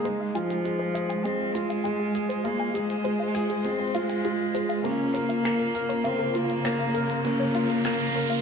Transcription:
Already playing: string section G#3 D#4
0.05 felt piano G#3, cello G#3, synth arpeggio sound C5, closed hi-hat
0.20 synth arpeggio sound F5
0.34 cello F3, felt piano F4, synth arpeggio sound G#5, closed hi-hat
0.50 synth arpeggio sound G#4, closed hi-hat
0.65 felt piano G#3, closed hi-hat
0.70 string section F4
0.79 synth arpeggio sound C5
0.95 felt piano G#4, synth arpeggio sound F5, closed hi-hat
1.09 synth arpeggio sound G#5, closed hi-hat
1.24 felt piano G#3, cello C4, synth arpeggio sound G#4, closed hi-hat
1.55 cello G#3, felt piano F4, synth arpeggio sound C5, closed hi-hat
1.70 synth arpeggio sound F5, closed hi-hat
1.84 felt piano G#3, synth arpeggio sound G#5, closed hi-hat
1.90 string section C5
2.00 synth arpeggio sound G#4
2.15 felt piano G#4, closed hi-hat
2.29 synth arpeggio sound C5, closed hi-hat
2.44 felt piano G#3, cello A#3, synth arpeggio sound F5, closed hi-hat
2.59 synth arpeggio sound G#5
2.74 cello G#3, synth arpeggio sound G#4, felt piano G#4, closed hi-hat
2.90 closed hi-hat
3.04 felt piano G#3, synth arpeggio sound C5, closed hi-hat
3.20 synth arpeggio sound F5
3.35 felt piano G#4, synth arpeggio sound G#5, closed hi-hat
3.50 synth arpeggio sound G#4, closed hi-hat
3.65 felt piano G#3, cello C4, closed hi-hat
3.79 synth arpeggio sound C5
3.95 cello G#3, felt piano F4, synth arpeggio sound F5, closed hi-hat
4.09 synth arpeggio sound G#5, closed hi-hat
4.25 felt piano F4, synth arpeggio sound G#4, closed hi-hat
4.54 felt piano G#3, synth arpeggio sound C5, closed hi-hat
4.69 synth arpeggio sound F5, closed hi-hat
4.84 string section C#3, felt piano A#3, cello C#4, synth arpeggio sound A#4, closed hi-hat, riser
5.14 cello A#3, felt piano A#4, synth arpeggio sound C#5, closed hi-hat
5.28 string section A#3, synth arpeggio sound F5, closed hi-hat
5.44 felt piano A#3, synth arpeggio sound A#4, finger snap, closed hi-hat
5.59 synth arpeggio sound A#4
5.75 felt piano A#4, closed hi-hat
5.89 synth arpeggio sound C#5, closed hi-hat
5.98 string section A#4
6.04 felt piano A#3, cello C4, synth arpeggio sound F5, closed hi-hat
6.19 synth arpeggio sound A#4
6.34 cello A#3, felt piano F4, synth arpeggio sound A#4, closed hi-hat
6.50 closed hi-hat
6.64 felt piano A#3, synth arpeggio sound C#5, finger snap, closed hi-hat
6.79 synth arpeggio sound F5
6.94 synth arpeggio sound A#4, felt piano A#4, closed hi-hat
7.09 synth arpeggio sound A#4, closed hi-hat
7.25 felt piano A#3, cello C#4, closed hi-hat
7.40 synth arpeggio sound C#5
7.55 cello A#3, felt piano F4, synth arpeggio sound F5, closed hi-hat
7.70 synth arpeggio sound A#4, closed hi-hat
7.85 felt piano A#3, synth arpeggio sound A#4, finger snap, closed hi-hat
8.15 felt piano A#4, synth arpeggio sound C#5, closed hi-hat
8.30 synth arpeggio sound F5, closed hi-hat

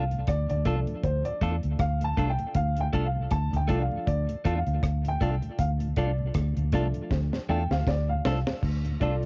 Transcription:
Already playing: fingered electric bass C2, upright piano F5
0.11 tonewheel organ D2 A2, closed hi-hat
0.27 fingered electric bass D2, upright piano D5, kick, cross-stick, closed hi-hat
0.50 tonewheel organ D2 A2, fingered electric bass D2, upright piano D5, closed hi-hat
0.65 fingered electric bass C2, upright piano F3 A3 D4 A4, clean electric guitar A3 D4 F4 A4, tonewheel organ A3 D4 F4, kick, closed hi-hat
0.87 tonewheel organ D2 A2, closed hi-hat
1.03 fingered electric bass D2, upright piano C5, kick, closed hi-hat
1.25 tonewheel organ D2 A2, upright piano D5, closed hi-hat
1.41 fingered electric bass E2, clean electric guitar A3 D4 F4 A4, tonewheel organ A3 D4 F4, kick, closed hi-hat
1.63 fingered electric bass D2, closed hi-hat
1.79 fingered electric bass D2, upright piano F5, kick, cross-stick, closed hi-hat
2.01 tonewheel organ D2 A2, upright piano A5, closed hi-hat
2.17 fingered electric bass C2, clean electric guitar A3 D4 F4 A4, tonewheel organ A3 D4 F4, kick, closed hi-hat
2.30 upright piano G5
2.39 tonewheel organ D2 A2, closed hi-hat
2.55 fingered electric bass D2, upright piano F5, kick, closed hi-hat
2.77 tonewheel organ D2 A2, upright piano G5, closed hi-hat
2.93 fingered electric bass C2, clean electric guitar A3 D4 F4 A4, tonewheel organ A3 D4 F4, kick, closed hi-hat
3.06 upright piano F5
3.15 tonewheel organ D2 A2
3.31 fingered electric bass D2, upright piano A5, kick, cross-stick, closed hi-hat
3.53 fingered electric bass D2, tonewheel organ D2 A2, upright piano G5, closed hi-hat
3.68 fingered electric bass C2, upright piano F3 A3 D4, clean electric guitar A3 D4 F4 A4, tonewheel organ A3 D4 F4, kick, closed hi-hat
3.82 upright piano F5
3.92 tonewheel organ D2 A2
4.07 fingered electric bass D2, upright piano D5, kick, closed hi-hat
4.29 tonewheel organ D2 A2, closed hi-hat
4.45 fingered electric bass E2, clean electric guitar A3 D4 F4 A4, tonewheel organ A3 D4 F4, kick, closed hi-hat
4.58 upright piano F5
4.67 fingered electric bass D2, closed hi-hat
4.83 fingered electric bass D2, kick, cross-stick, closed hi-hat
5.04 tonewheel organ D2 A2, upright piano G5, closed hi-hat
5.21 fingered electric bass C2, tonewheel organ A3 D4 F4, clean electric guitar A3 D4 F4 A4, kick, closed hi-hat
5.42 tonewheel organ D2 A2, closed hi-hat
5.59 fingered electric bass D2, upright piano F5, kick, closed hi-hat
5.80 tonewheel organ D2 A2, closed hi-hat
5.96 fingered electric bass C2, tonewheel organ A3 D4 F4, clean electric guitar A3 D4 F4 A4, upright piano D5, kick, closed hi-hat
6.18 tonewheel organ D2 A2
6.34 fingered electric bass D2, kick, cross-stick, closed hi-hat
6.57 tonewheel organ D2 A2, fingered electric bass D2, closed hi-hat
6.72 fingered electric bass C2, upright piano F3 A3 D4, clean electric guitar A3 D4 F4 A4, tonewheel organ A3 D4 F4, kick, closed hi-hat
6.94 tonewheel organ D2 A2, closed hi-hat
7.11 fingered electric bass D2, kick, snare
7.33 tonewheel organ D2 A2, snare
7.49 fingered electric bass E2, clean electric guitar A3 D4 F4 A4, tonewheel organ A3 D4 F4, upright piano G5
7.71 fingered electric bass D2, upright piano F5, snare
7.87 fingered electric bass D2, upright piano D5, kick, snare
8.09 tonewheel organ D2 A2, upright piano F5
8.25 fingered electric bass C2, clean electric guitar A3 D4 F4 A4, tonewheel organ A3 D4 F4, snare
8.47 tonewheel organ D2 A2, snare
8.63 fingered electric bass D2, kick, crash
8.85 tonewheel organ D2 A2, closed hi-hat
9.00 fingered electric bass C2, clean electric guitar A3 D4 F4 A4, tonewheel organ A3 D4 F4, upright piano F4 A4 D5, kick, closed hi-hat

